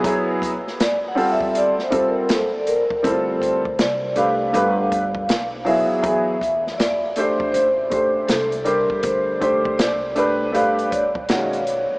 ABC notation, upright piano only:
X:1
M:4/4
L:1/8
Q:"Swing 16ths" 1/4=80
K:Dm
V:1 name="Upright piano"
[^F,=B,E^G] z2 [=G,C=FA] z [G,CFA] z2 | [G,CEFA] z2 [A,DG=B] [A,DGB] z2 [^F,=B,E^G] | [^F,=B,E^G] z2 [A,D=Gc] z [A,DGc] z [G,DGc]- | [G,DGc] [A,DGc] z [A,DG=B] [A,DGB] z [^D,^G,^C^F] z |]